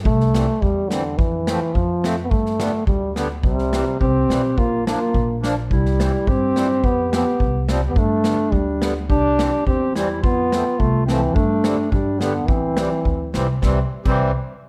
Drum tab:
CC |--------|--------|--------|--------|
HH |--p---p-|--p---p-|--p---p-|--p---p-|
SD |-oo---o-|--o---o-|-oo---o-|-oo---o-|
BD |o---o---|o---o---|o---o---|o---o---|

CC |--------|--------|--------|--------|
HH |--p---p-|--p---p-|--p---p-|--p---p-|
SD |--o---o-|-oo---o-|--o---o-|--o---o-|
BD |o---o---|o---o---|o---o---|o---o---|

CC |--------|--------|--------|--------|
HH |--p---p-|--p---p-|--p---p-|--p---p-|
SD |--o---o-|--o---o-|--o---o-|--o---o-|
BD |o---o---|o---o---|o---o---|o---o---|

CC |---x----|
HH |--------|
SD |o-------|
BD |o--o----|